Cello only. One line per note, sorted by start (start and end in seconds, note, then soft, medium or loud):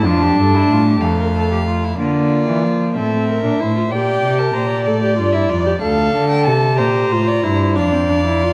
0.05 0.36 F2 medium
0.37 0.69 G2 medium
0.69 1.01 A2 medium
1.02 1.97 F2 medium
1.99 2.45 D3 medium
2.49 2.65 E3 medium
2.64 2.98 F3 medium
2.96 3.43 A2 medium
3.43 3.50 A#2 medium
3.60 3.91 A2 medium
3.91 4.22 A#2 medium
4.23 4.54 C3 medium
4.54 4.88 A#2 medium
4.87 5.20 A2 medium
5.19 5.50 G2 medium
5.51 5.82 F2 medium
5.83 6.14 D2 medium
6.15 6.49 D3 medium
6.47 6.81 C3 medium
6.79 7.11 A#2 medium
7.11 7.43 A2 medium
7.45 7.79 G2 medium
7.77 8.53 F2 medium